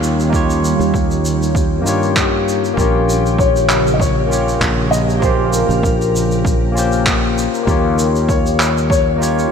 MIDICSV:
0, 0, Header, 1, 6, 480
1, 0, Start_track
1, 0, Tempo, 612245
1, 255, Time_signature, 4, 2, 24, 8
1, 7461, End_track
2, 0, Start_track
2, 0, Title_t, "Grand piano"
2, 0, Program_c, 0, 0
2, 0, Note_on_c, 0, 75, 93
2, 1669, Note_off_c, 0, 75, 0
2, 2186, Note_on_c, 0, 70, 81
2, 2659, Note_on_c, 0, 73, 81
2, 2675, Note_off_c, 0, 70, 0
2, 3087, Note_on_c, 0, 75, 69
2, 3099, Note_off_c, 0, 73, 0
2, 3136, Note_off_c, 0, 75, 0
2, 3142, Note_on_c, 0, 73, 91
2, 3849, Note_on_c, 0, 75, 98
2, 3880, Note_off_c, 0, 73, 0
2, 4083, Note_on_c, 0, 72, 94
2, 4099, Note_off_c, 0, 75, 0
2, 4139, Note_off_c, 0, 72, 0
2, 4328, Note_on_c, 0, 70, 82
2, 4780, Note_off_c, 0, 70, 0
2, 6026, Note_on_c, 0, 70, 77
2, 6510, Note_on_c, 0, 73, 85
2, 6515, Note_off_c, 0, 70, 0
2, 6971, Note_off_c, 0, 73, 0
2, 6983, Note_on_c, 0, 73, 90
2, 7461, Note_off_c, 0, 73, 0
2, 7461, End_track
3, 0, Start_track
3, 0, Title_t, "Tine electric piano"
3, 0, Program_c, 1, 4
3, 0, Control_c, 1, 64, 127
3, 0, Note_on_c, 1, 58, 70
3, 0, Note_on_c, 1, 63, 61
3, 0, Note_on_c, 1, 65, 66
3, 0, Note_on_c, 1, 67, 67
3, 0, Note_on_c, 1, 73, 75
3, 214, Note_off_c, 1, 58, 0
3, 221, Note_off_c, 1, 63, 0
3, 225, Note_on_c, 1, 58, 74
3, 228, Note_off_c, 1, 65, 0
3, 235, Note_off_c, 1, 67, 0
3, 237, Note_on_c, 1, 63, 65
3, 242, Note_off_c, 1, 73, 0
3, 250, Note_on_c, 1, 65, 64
3, 264, Note_on_c, 1, 67, 69
3, 281, Note_on_c, 1, 73, 85
3, 1413, Note_off_c, 1, 58, 0
3, 1419, Note_off_c, 1, 63, 0
3, 1424, Note_on_c, 1, 58, 71
3, 1426, Note_off_c, 1, 65, 0
3, 1433, Note_off_c, 1, 67, 0
3, 1439, Note_on_c, 1, 63, 62
3, 1441, Note_off_c, 1, 73, 0
3, 1458, Note_on_c, 1, 65, 60
3, 1469, Note_on_c, 1, 67, 58
3, 1480, Note_on_c, 1, 73, 76
3, 2133, Note_off_c, 1, 58, 0
3, 2141, Note_off_c, 1, 63, 0
3, 2146, Note_on_c, 1, 58, 71
3, 2150, Note_off_c, 1, 65, 0
3, 2155, Note_off_c, 1, 67, 0
3, 2160, Note_on_c, 1, 61, 67
3, 2161, Note_off_c, 1, 73, 0
3, 2177, Note_on_c, 1, 65, 71
3, 2184, Control_c, 1, 64, 0
3, 2191, Note_on_c, 1, 67, 73
3, 2205, Note_on_c, 1, 73, 80
3, 2301, Control_c, 1, 64, 127
3, 3334, Note_off_c, 1, 58, 0
3, 3341, Note_off_c, 1, 61, 0
3, 3342, Note_on_c, 1, 58, 70
3, 3349, Note_off_c, 1, 65, 0
3, 3356, Note_off_c, 1, 67, 0
3, 3356, Note_on_c, 1, 61, 62
3, 3363, Note_off_c, 1, 73, 0
3, 3371, Note_on_c, 1, 65, 62
3, 3386, Note_on_c, 1, 67, 64
3, 3401, Note_on_c, 1, 73, 76
3, 4052, Note_off_c, 1, 58, 0
3, 4059, Note_off_c, 1, 61, 0
3, 4066, Note_off_c, 1, 65, 0
3, 4071, Note_on_c, 1, 58, 81
3, 4074, Note_off_c, 1, 67, 0
3, 4081, Note_off_c, 1, 73, 0
3, 4085, Note_on_c, 1, 61, 69
3, 4098, Note_on_c, 1, 65, 73
3, 4114, Note_on_c, 1, 67, 74
3, 4127, Note_on_c, 1, 72, 83
3, 5256, Note_off_c, 1, 58, 0
3, 5263, Note_off_c, 1, 61, 0
3, 5269, Note_on_c, 1, 58, 70
3, 5270, Note_off_c, 1, 65, 0
3, 5278, Note_off_c, 1, 67, 0
3, 5284, Note_off_c, 1, 72, 0
3, 5284, Note_on_c, 1, 61, 64
3, 5295, Note_on_c, 1, 65, 66
3, 5312, Note_on_c, 1, 67, 66
3, 5324, Note_on_c, 1, 72, 77
3, 5975, Note_off_c, 1, 58, 0
3, 5983, Note_off_c, 1, 61, 0
3, 5986, Note_on_c, 1, 58, 77
3, 5988, Note_off_c, 1, 65, 0
3, 5997, Note_off_c, 1, 67, 0
3, 6001, Note_on_c, 1, 63, 70
3, 6003, Note_off_c, 1, 72, 0
3, 6014, Note_on_c, 1, 65, 72
3, 6026, Control_c, 1, 64, 0
3, 6029, Note_on_c, 1, 67, 76
3, 6045, Note_on_c, 1, 73, 82
3, 6153, Control_c, 1, 64, 127
3, 7174, Note_off_c, 1, 58, 0
3, 7182, Note_off_c, 1, 63, 0
3, 7182, Note_on_c, 1, 58, 70
3, 7188, Note_off_c, 1, 65, 0
3, 7195, Note_off_c, 1, 67, 0
3, 7199, Note_on_c, 1, 63, 66
3, 7203, Note_off_c, 1, 73, 0
3, 7209, Note_on_c, 1, 65, 68
3, 7225, Note_on_c, 1, 67, 64
3, 7238, Note_on_c, 1, 73, 81
3, 7461, Note_off_c, 1, 58, 0
3, 7461, Note_off_c, 1, 63, 0
3, 7461, Note_off_c, 1, 65, 0
3, 7461, Note_off_c, 1, 67, 0
3, 7461, Note_off_c, 1, 73, 0
3, 7461, End_track
4, 0, Start_track
4, 0, Title_t, "Ambient pad"
4, 0, Program_c, 2, 92
4, 0, Note_on_c, 2, 51, 76
4, 0, Note_on_c, 2, 55, 67
4, 0, Note_on_c, 2, 61, 72
4, 0, Note_on_c, 2, 65, 85
4, 230, Note_off_c, 2, 65, 0
4, 268, Note_on_c, 2, 67, 86
4, 2140, Note_off_c, 2, 51, 0
4, 2142, Note_off_c, 2, 55, 0
4, 2143, Note_off_c, 2, 61, 0
4, 2174, Note_on_c, 2, 49, 78
4, 2177, Note_on_c, 2, 58, 66
4, 2177, Note_on_c, 2, 70, 68
4, 5983, Note_off_c, 2, 49, 0
4, 5984, Note_off_c, 2, 58, 0
4, 5985, Note_off_c, 2, 70, 0
4, 5990, Note_off_c, 2, 67, 0
4, 6014, Note_on_c, 2, 61, 75
4, 6016, Note_on_c, 2, 51, 74
4, 6016, Note_on_c, 2, 55, 76
4, 6019, Note_on_c, 2, 65, 87
4, 7461, Note_off_c, 2, 51, 0
4, 7461, Note_off_c, 2, 55, 0
4, 7461, Note_off_c, 2, 61, 0
4, 7461, Note_off_c, 2, 65, 0
4, 7461, End_track
5, 0, Start_track
5, 0, Title_t, "Fretless electric bass"
5, 0, Program_c, 3, 35
5, 0, Note_on_c, 3, 39, 87
5, 577, Note_off_c, 3, 39, 0
5, 624, Note_on_c, 3, 39, 83
5, 1450, Note_off_c, 3, 39, 0
5, 1450, Note_on_c, 3, 43, 80
5, 2131, Note_off_c, 3, 43, 0
5, 2173, Note_on_c, 3, 34, 88
5, 3573, Note_off_c, 3, 34, 0
5, 3612, Note_on_c, 3, 34, 92
5, 4415, Note_off_c, 3, 34, 0
5, 4461, Note_on_c, 3, 34, 82
5, 5855, Note_off_c, 3, 34, 0
5, 6014, Note_on_c, 3, 39, 96
5, 7413, Note_off_c, 3, 39, 0
5, 7461, End_track
6, 0, Start_track
6, 0, Title_t, "Drums"
6, 24, Note_on_c, 9, 82, 82
6, 103, Note_off_c, 9, 82, 0
6, 155, Note_on_c, 9, 82, 50
6, 234, Note_off_c, 9, 82, 0
6, 257, Note_on_c, 9, 36, 99
6, 267, Note_on_c, 9, 82, 55
6, 335, Note_off_c, 9, 36, 0
6, 345, Note_off_c, 9, 82, 0
6, 394, Note_on_c, 9, 82, 49
6, 472, Note_off_c, 9, 82, 0
6, 505, Note_on_c, 9, 82, 76
6, 583, Note_off_c, 9, 82, 0
6, 635, Note_on_c, 9, 82, 44
6, 713, Note_off_c, 9, 82, 0
6, 735, Note_on_c, 9, 36, 93
6, 744, Note_on_c, 9, 82, 48
6, 813, Note_off_c, 9, 36, 0
6, 823, Note_off_c, 9, 82, 0
6, 870, Note_on_c, 9, 82, 42
6, 949, Note_off_c, 9, 82, 0
6, 981, Note_on_c, 9, 82, 83
6, 1059, Note_off_c, 9, 82, 0
6, 1118, Note_on_c, 9, 82, 52
6, 1196, Note_off_c, 9, 82, 0
6, 1214, Note_on_c, 9, 36, 99
6, 1225, Note_on_c, 9, 82, 57
6, 1292, Note_off_c, 9, 36, 0
6, 1303, Note_off_c, 9, 82, 0
6, 1463, Note_on_c, 9, 82, 85
6, 1542, Note_off_c, 9, 82, 0
6, 1589, Note_on_c, 9, 82, 42
6, 1668, Note_off_c, 9, 82, 0
6, 1695, Note_on_c, 9, 36, 89
6, 1698, Note_on_c, 9, 39, 69
6, 1701, Note_on_c, 9, 82, 54
6, 1773, Note_off_c, 9, 36, 0
6, 1776, Note_off_c, 9, 39, 0
6, 1779, Note_off_c, 9, 82, 0
6, 1950, Note_on_c, 9, 82, 84
6, 2028, Note_off_c, 9, 82, 0
6, 2075, Note_on_c, 9, 82, 45
6, 2154, Note_off_c, 9, 82, 0
6, 2174, Note_on_c, 9, 36, 100
6, 2185, Note_on_c, 9, 82, 53
6, 2252, Note_off_c, 9, 36, 0
6, 2264, Note_off_c, 9, 82, 0
6, 2426, Note_on_c, 9, 82, 86
6, 2504, Note_off_c, 9, 82, 0
6, 2557, Note_on_c, 9, 82, 43
6, 2635, Note_off_c, 9, 82, 0
6, 2654, Note_on_c, 9, 36, 101
6, 2665, Note_on_c, 9, 82, 61
6, 2732, Note_off_c, 9, 36, 0
6, 2744, Note_off_c, 9, 82, 0
6, 2792, Note_on_c, 9, 82, 45
6, 2871, Note_off_c, 9, 82, 0
6, 2895, Note_on_c, 9, 39, 77
6, 2901, Note_on_c, 9, 82, 82
6, 2974, Note_off_c, 9, 39, 0
6, 2979, Note_off_c, 9, 82, 0
6, 3034, Note_on_c, 9, 82, 50
6, 3113, Note_off_c, 9, 82, 0
6, 3133, Note_on_c, 9, 36, 101
6, 3148, Note_on_c, 9, 82, 59
6, 3212, Note_off_c, 9, 36, 0
6, 3227, Note_off_c, 9, 82, 0
6, 3388, Note_on_c, 9, 82, 89
6, 3466, Note_off_c, 9, 82, 0
6, 3514, Note_on_c, 9, 82, 49
6, 3593, Note_off_c, 9, 82, 0
6, 3613, Note_on_c, 9, 36, 98
6, 3620, Note_on_c, 9, 39, 75
6, 3623, Note_on_c, 9, 82, 57
6, 3692, Note_off_c, 9, 36, 0
6, 3699, Note_off_c, 9, 39, 0
6, 3701, Note_off_c, 9, 82, 0
6, 3863, Note_on_c, 9, 82, 89
6, 3942, Note_off_c, 9, 82, 0
6, 3994, Note_on_c, 9, 82, 43
6, 4073, Note_off_c, 9, 82, 0
6, 4094, Note_on_c, 9, 36, 105
6, 4099, Note_on_c, 9, 82, 54
6, 4172, Note_off_c, 9, 36, 0
6, 4177, Note_off_c, 9, 82, 0
6, 4336, Note_on_c, 9, 82, 94
6, 4415, Note_off_c, 9, 82, 0
6, 4470, Note_on_c, 9, 82, 44
6, 4549, Note_off_c, 9, 82, 0
6, 4574, Note_on_c, 9, 36, 104
6, 4584, Note_on_c, 9, 82, 53
6, 4652, Note_off_c, 9, 36, 0
6, 4663, Note_off_c, 9, 82, 0
6, 4715, Note_on_c, 9, 82, 44
6, 4794, Note_off_c, 9, 82, 0
6, 4828, Note_on_c, 9, 82, 79
6, 4907, Note_off_c, 9, 82, 0
6, 4951, Note_on_c, 9, 82, 47
6, 5029, Note_off_c, 9, 82, 0
6, 5055, Note_on_c, 9, 36, 112
6, 5068, Note_on_c, 9, 82, 59
6, 5133, Note_off_c, 9, 36, 0
6, 5146, Note_off_c, 9, 82, 0
6, 5309, Note_on_c, 9, 82, 96
6, 5387, Note_off_c, 9, 82, 0
6, 5427, Note_on_c, 9, 82, 47
6, 5505, Note_off_c, 9, 82, 0
6, 5536, Note_on_c, 9, 36, 108
6, 5538, Note_on_c, 9, 39, 83
6, 5543, Note_on_c, 9, 82, 63
6, 5614, Note_off_c, 9, 36, 0
6, 5617, Note_off_c, 9, 39, 0
6, 5622, Note_off_c, 9, 82, 0
6, 5787, Note_on_c, 9, 82, 83
6, 5865, Note_off_c, 9, 82, 0
6, 5914, Note_on_c, 9, 82, 44
6, 5993, Note_off_c, 9, 82, 0
6, 6016, Note_on_c, 9, 36, 105
6, 6021, Note_on_c, 9, 82, 63
6, 6094, Note_off_c, 9, 36, 0
6, 6099, Note_off_c, 9, 82, 0
6, 6261, Note_on_c, 9, 82, 91
6, 6340, Note_off_c, 9, 82, 0
6, 6394, Note_on_c, 9, 82, 48
6, 6472, Note_off_c, 9, 82, 0
6, 6496, Note_on_c, 9, 36, 104
6, 6502, Note_on_c, 9, 82, 57
6, 6574, Note_off_c, 9, 36, 0
6, 6581, Note_off_c, 9, 82, 0
6, 6635, Note_on_c, 9, 82, 50
6, 6713, Note_off_c, 9, 82, 0
6, 6740, Note_on_c, 9, 39, 72
6, 6750, Note_on_c, 9, 82, 85
6, 6818, Note_off_c, 9, 39, 0
6, 6828, Note_off_c, 9, 82, 0
6, 6880, Note_on_c, 9, 82, 52
6, 6958, Note_off_c, 9, 82, 0
6, 6977, Note_on_c, 9, 36, 101
6, 6996, Note_on_c, 9, 82, 64
6, 7055, Note_off_c, 9, 36, 0
6, 7074, Note_off_c, 9, 82, 0
6, 7231, Note_on_c, 9, 82, 97
6, 7310, Note_off_c, 9, 82, 0
6, 7361, Note_on_c, 9, 82, 52
6, 7439, Note_off_c, 9, 82, 0
6, 7461, End_track
0, 0, End_of_file